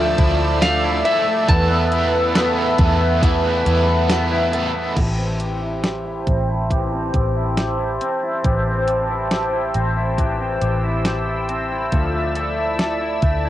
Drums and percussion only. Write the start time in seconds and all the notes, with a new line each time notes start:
0.18 kick, closed hi-hat
0.62 snare, closed hi-hat, tambourine
1.05 closed hi-hat
1.49 kick, closed hi-hat
1.92 closed hi-hat
2.35 snare, closed hi-hat, tambourine
2.78 kick, closed hi-hat
3.23 kick, closed hi-hat
3.66 closed hi-hat
4.09 snare, closed hi-hat, tambourine
4.53 closed hi-hat
4.97 kick, closed hi-hat, crash
5.40 closed hi-hat
5.83 snare, closed hi-hat
6.27 kick, closed hi-hat
6.71 kick, closed hi-hat
7.14 kick, closed hi-hat
7.57 snare, closed hi-hat
8.01 closed hi-hat
8.44 kick, closed hi-hat
8.88 closed hi-hat
9.31 snare, closed hi-hat
9.74 closed hi-hat
10.18 kick, closed hi-hat
10.62 closed hi-hat
11.05 snare, closed hi-hat
11.49 closed hi-hat
11.92 kick, closed hi-hat
12.35 closed hi-hat
12.79 snare, closed hi-hat
13.22 kick, closed hi-hat